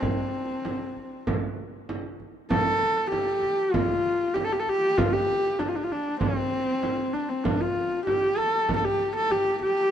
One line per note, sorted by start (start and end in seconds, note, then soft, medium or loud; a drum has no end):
0.00 1.25 C4 medium
0.00 frame drum medium
0.34 frame drum soft
0.65 frame drum medium
0.96 frame drum soft
1.27 frame drum medium
1.89 frame drum medium
2.20 frame drum soft
2.50 3.08 A4 loud
2.50 frame drum medium
2.81 frame drum soft
3.11 3.74 G4 medium
3.11 frame drum medium
3.42 frame drum soft
3.72 4.36 F4 loud
3.72 frame drum medium
4.34 4.46 G4 medium
4.34 frame drum medium
4.44 4.54 A4 medium
4.52 4.61 G4 medium
4.60 4.71 A4 medium
4.67 4.99 G4 loud
4.67 frame drum soft
4.98 5.15 F4 medium
4.98 frame drum medium
5.13 5.61 G4 loud
5.29 frame drum soft
5.59 5.70 D4 medium
5.59 frame drum medium
5.68 5.77 F4 medium
5.76 5.85 D4 medium
5.84 5.93 F4 medium
5.90 6.21 D4 medium
5.90 frame drum soft
6.21 7.15 C4 medium
6.21 frame drum medium
6.83 frame drum medium
7.13 7.30 D4 medium
7.13 frame drum soft
7.29 7.45 C4 medium
7.44 7.62 D4 medium
7.44 frame drum medium
7.60 8.06 F4 medium
7.77 frame drum soft
8.07 8.39 G4 medium
8.07 frame drum medium
8.38 8.75 A4 medium
8.38 frame drum soft
8.69 frame drum medium
8.76 8.86 A4 medium
8.84 9.15 G4 medium
9.16 9.33 A4 medium
9.30 9.62 G4 medium
9.30 frame drum soft
9.61 9.91 G4 loud
9.61 frame drum soft